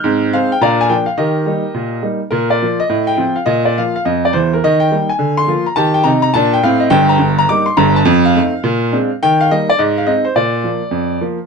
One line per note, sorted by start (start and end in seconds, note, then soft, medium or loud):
0.04 0.29 G#2 medium
0.04 0.21 C4 medium
0.33 0.49 G#3 soft
0.33 0.50 C4 medium
0.33 0.50 D#4 soft
0.33 0.51 G#4 medium
0.33 0.51 C5 medium
0.33 0.52 F5 medium
0.52 0.62 G5 medium
0.61 0.86 A#2 medium
0.61 0.79 D4 medium
0.61 0.80 D5 medium
0.61 0.79 F5 medium
0.61 0.80 A#5 medium
0.81 0.91 G#5 loud
0.89 1.06 F3 soft
0.89 1.06 A#3 medium
0.89 1.06 D4 medium
0.89 1.08 G5 medium
1.06 1.18 F5 medium
1.17 1.43 D#3 medium
1.17 2.01 G4 medium
1.17 2.01 A#4 medium
1.17 2.04 D#5 medium
1.46 1.62 G3 soft
1.46 1.63 A#3 soft
1.46 1.63 D#4 soft
1.74 2.00 A#2 medium
2.03 2.19 G3 soft
2.03 2.19 A#3 soft
2.03 2.20 D#4 soft
2.31 2.57 A#2 medium
2.31 2.51 A#4 medium
2.50 2.81 D5 medium
2.62 2.78 F3 soft
2.62 2.78 A#3 soft
2.62 2.78 F4 soft
2.80 3.09 D#5 medium
2.89 3.15 A2 medium
3.07 3.37 G5 medium
3.18 3.34 F3 soft
3.18 3.34 C4 medium
3.18 3.34 F4 medium
3.36 3.47 F5 medium
3.46 3.72 A#2 medium
3.46 3.66 D#5 loud
3.65 3.76 D5 medium
3.78 3.94 F3 soft
3.78 3.94 A#3 soft
3.78 3.94 F4 soft
3.78 3.94 F5 medium
3.96 4.06 F5 medium
4.05 4.30 F2 medium
4.05 4.24 D#5 medium
4.25 4.35 D5 medium
4.33 4.57 E2 medium
4.33 4.57 E3 medium
4.33 4.52 C5 medium
4.53 4.63 A#4 medium
4.64 4.88 D#3 medium
4.64 4.82 D#5 loud
4.80 5.10 G5 medium
4.91 5.07 G3 soft
4.91 5.08 A#3 soft
4.91 5.08 D#4 soft
5.09 5.38 G#5 medium
5.19 5.44 D3 medium
5.37 5.67 C6 loud
5.48 5.64 F3 soft
5.48 5.64 A#3 soft
5.48 5.64 F4 medium
5.66 5.77 A#5 medium
5.76 6.00 D#3 medium
5.76 6.01 G4 medium
5.76 5.95 A5 loud
5.94 6.06 G5 loud
6.04 6.28 C3 medium
6.04 6.29 D#4 medium
6.04 6.21 A#5 loud
6.22 6.34 A#5 loud
6.34 6.58 A#2 loud
6.34 6.59 D4 loud
6.34 6.53 A5 loud
6.53 6.64 G5 loud
6.63 6.87 A2 medium
6.63 6.88 C4 medium
6.63 6.82 F5 loud
6.80 6.92 D#5 medium
6.90 7.14 G1 loud
6.90 7.14 G2 loud
6.90 7.10 G5 loud
7.09 7.37 A#5 loud
7.19 7.43 G1 medium
7.19 7.43 G2 medium
7.39 7.49 A#5 loud
7.49 7.66 G3 medium
7.49 7.66 A#3 medium
7.49 7.66 D#4 medium
7.49 7.68 D6 loud
7.66 7.77 C6 medium
7.77 8.01 G1 loud
7.77 8.01 G2 loud
7.77 7.96 A#5 loud
7.96 8.25 A5 loud
8.05 8.31 F2 loud
8.25 9.11 F5 loud
8.36 8.52 A3 medium
8.36 8.52 C4 medium
8.36 8.52 D#4 medium
8.64 8.88 A#2 loud
8.92 9.08 G#3 medium
8.92 9.09 C4 medium
8.92 9.09 D4 medium
9.23 9.47 D#3 medium
9.23 9.41 G5 loud
9.41 9.51 F5 loud
9.51 9.67 G3 soft
9.51 9.67 A#3 medium
9.51 9.68 D#4 soft
9.51 9.69 D#5 loud
9.70 9.79 D5 loud
9.79 10.03 G#2 medium
9.79 9.97 D#5 medium
9.98 10.08 F5 medium
10.07 10.23 G#3 soft
10.07 10.23 C4 medium
10.07 10.23 D#4 medium
10.07 10.26 D#5 medium
10.25 10.36 C5 medium
10.36 10.60 A#2 medium
10.36 11.22 D5 medium
10.64 10.80 F3 soft
10.64 10.81 A#3 soft
10.91 11.17 F2 medium
11.21 11.37 F3 soft
11.21 11.37 A#3 soft